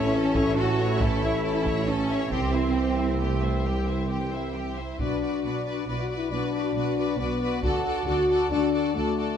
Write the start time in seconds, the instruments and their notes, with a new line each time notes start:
Already playing: double bass section A1, tuba A1, trombone section E3 A3, cello section C#4, viola section E4, french horn section E4 A4, violin section C#5 E5
0.13 viola section C#4, violin section A4 C#5
0.35 viola section E4, violin section C#5 E5, taiko
0.57 viola section C#4, cello section F#4, violin section A4 C#5
0.79 viola section E4, violin section C#5 E5
1.00 viola section C#4, cello section E4, violin section A4 C#5, taiko
1.21 viola section E4, violin section C#5 E5
1.44 viola section C#4, violin section A4 C#5
1.65 viola section E4, violin section C#5 E5, taiko
1.87 cello section C#4, viola section C#4, violin section A4 C#5
2.09 viola section E4, violin section C#5 E5
2.31 double bass section C2, tuba C2, trombone section E3 C4, cello section C4, viola section C4, french horn section E4 G4, violin section G4 G5, taiko
2.53 viola section E4, violin section C5 E5
2.75 viola section C4, violin section G4 G5
2.97 viola section E4, violin section C5 E5
3.19 cello section A3, viola section C4, violin section G4 G5
3.42 viola section E4, violin section C5 E5
3.64 cello section G3, viola section C4, violin section G4 G5
3.87 viola section E4, violin section C5 E5
4.08 viola section C4, violin section G4 G5
4.32 viola section E4, violin section C5 E5
4.54 viola section C4, violin section G4 G5
4.76 viola section E4, violin section C5 E5
4.99 double bass section B1, cello section B2, french horn section D4, viola section F#4, violin section B4 D5, taiko
5.21 viola section F#4, violin section B4 D5
5.44 double bass section B1, cello section B2, viola section F#4, violin section B4 D5
5.65 viola section F#4, violin section B4 D5
5.88 double bass section B1, cello section B2, french horn section E4, viola section F#4, violin section B4 D5
6.03 french horn section F#4
6.09 viola section F#4, violin section B4 D5
6.17 french horn section E4
6.30 double bass section B1, cello section B2, french horn section D4, viola section F#4, violin section B4 D5
6.53 viola section F#4, violin section B4 D5
6.75 double bass section B1, cello section B2, viola section F#4, violin section B4 D5
6.97 viola section F#4, violin section B4 D5
7.18 double bass section B1, cello section B2, french horn section B3, viola section F#4, violin section B4 D5
7.40 viola section F#4, violin section B4 D5
7.63 double bass section D2, cello section D3, viola section F#4, french horn section F#4, violin section A4 D5, taiko
7.85 viola section F#4, violin section A4 D5
8.06 double bass section D2, cello section D3, french horn section F#4, viola section F#4, violin section A4 D5
8.30 viola section F#4, violin section A4 D5
8.51 double bass section D2, cello section D3, french horn section D4, viola section F#4, violin section A4 D5
8.73 viola section F#4, violin section A4 D5
8.95 double bass section D2, cello section D3, french horn section A3, viola section F#4, violin section A4 D5
9.17 viola section F#4, violin section A4 D5